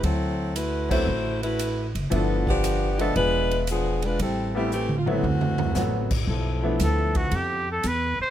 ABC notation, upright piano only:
X:1
M:4/4
L:1/8
Q:"Swing" 1/4=115
K:Gmix
V:1 name="Upright piano"
z3 [^F,A,B,CE] z4 | [F,A,B,DE] z2 [F,_A,B,De]3 z2 | z [G,A,B,CE] z [^F,A,B,CE] z2 [F,A,B,C^F] z | z [F,A,B,DE]3 z4 |]